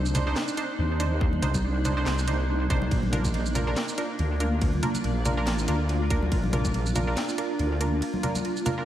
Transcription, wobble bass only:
0.00 0.35 C2 loud
0.79 1.41 D#2 loud
1.42 2.05 C2 loud
2.06 2.69 C2 loud
2.70 2.90 C2 loud
2.91 3.75 A#1 loud
4.19 4.81 D2 medium
5.04 5.48 A#1 loud
5.48 5.66 A1 loud
5.68 6.30 D2 loud
6.32 7.15 A#1 loud
7.59 8.02 D2 loud

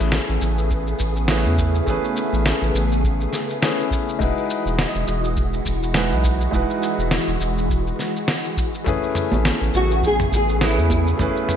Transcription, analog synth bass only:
0.00 0.19 A1 loud
0.29 0.38 A1 medium
0.42 0.94 A1 medium
1.00 1.47 A1 medium
1.46 1.81 E2 medium
1.87 1.99 A1 loud
2.33 2.52 A1 loud
2.62 2.71 A1 medium
2.74 3.27 A1 medium
4.20 4.32 E1 loud
4.66 4.85 E1 medium
4.95 5.04 E1 medium
5.08 5.60 E1 medium
5.66 6.14 E1 medium
6.12 6.48 B1 medium
6.53 6.65 E1 loud
6.99 7.18 E1 loud
7.28 7.37 E1 medium
7.40 7.93 E1 medium
8.87 8.98 A1 loud
9.32 9.51 A1 loud
9.62 9.70 A1 medium
9.74 10.26 A1 medium
10.32 10.80 A1 medium
10.78 11.13 E2 loud
11.20 11.31 A1 loud

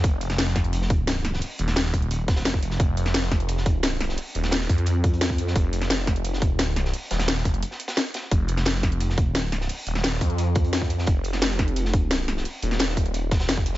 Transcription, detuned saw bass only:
0.04 1.41 F1 loud
1.59 1.92 D#1 loud
1.94 2.44 D#1 loud
2.45 2.78 F1 loud
2.80 4.16 F1 loud
4.35 4.68 D#1 loud
4.69 5.54 F2 loud
5.56 6.55 F1 loud
6.55 6.77 D#1 loud
6.77 6.92 C#1 loud
7.11 7.44 D#1 loud
7.45 7.63 F1 loud
8.32 9.31 F1 loud
9.31 9.53 D#1 loud
9.53 9.68 C#1 loud
9.87 10.20 D#1 loud
10.21 11.06 F2 loud
11.07 12.44 F1 loud
12.63 12.96 D#1 loud
12.97 13.47 D#1 loud
13.49 13.78 F1 loud

